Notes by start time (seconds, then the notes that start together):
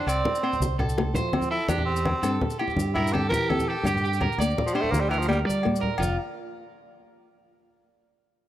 Already playing: D4
0.07 C2 C4 D5, low agogo, maracas
0.25 high conga, low conga
0.35 maracas
0.43 C4 C5, low agogo
0.53 low conga, maracas
0.60 C2, high conga, maracas
0.79 A4, low conga, low agogo
0.89 maracas
0.98 A3, high conga, low agogo
1.14 F3 A3 C5, low conga, maracas
1.24 low conga
1.32 C4, high conga, low conga, low agogo
1.42 low conga, maracas
1.51 E4 A4
1.68 E2 D4 E4 G4, high conga, low agogo, maracas
1.78 low conga
1.86 C4
1.96 maracas
2.05 high conga, low conga, low agogo
2.23 G2 C4 A4, low agogo, maracas
2.41 high conga, low conga
2.50 maracas
2.59 E4 G4, low agogo
2.68 low conga, maracas
2.76 G2, high conga, maracas
2.94 E4 A#4, low conga, low agogo
3.07 maracas
3.13 C4 G4 A4, high conga, low agogo
3.29 E3 G4 A#4, low conga
3.34 maracas
3.43 low conga
3.49 C4 A4, high conga, low conga, low agogo
3.60 low conga, maracas
3.68 G4 A4
3.83 G2 D4 G4, high conga, low conga, low agogo, maracas
3.94 low conga, maracas
4.04 G4, low conga, maracas
4.13 maracas
4.20 A#4, high conga, low conga, low agogo
4.32 maracas
4.38 D2 A#3 D5, low agogo, maracas
4.49 low conga
4.58 high conga, low conga
4.66 F3, maracas
4.74 G3 D4 C5, low agogo
4.82 A3, low conga
4.91 D2 A#3, high conga, maracas
5.00 G3
5.09 E3 A#4, high conga, low agogo, maracas
5.19 F3, maracas
5.28 G3 A#3, high conga, low agogo
5.32 maracas
5.45 G3 D5
5.49 high conga, maracas
5.63 A#3, low conga, low agogo
5.76 maracas
5.81 A#4, low conga
5.98 F1 F3 F4, low agogo
6.02 high conga, maracas